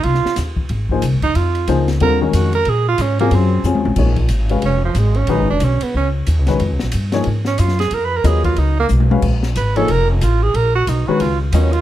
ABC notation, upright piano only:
X:1
M:4/4
L:1/8
Q:"Swing" 1/4=183
K:Ebdor
V:1 name="Upright piano"
z4 z [F,B,EAc] z2 | z2 [F,B,EAc] z [=D,=G,CF=A] [E,_A,_D_GB]2 z | z3 [D,G,CFA]3 [D,G,CFA]2 | [K:Bbphr] [F,B,EAd] z2 [A,DGcf] z4 |
[E,A,DGc] z6 [E,A,DGc] | z3 [F,B,EAd] z4 | z2 [G,CFBe]3 z2 [A,DGcf] | z3 [F,B,EAd] z4 |
z3 [E,A,DGc] z2 [G,CFBe] z |]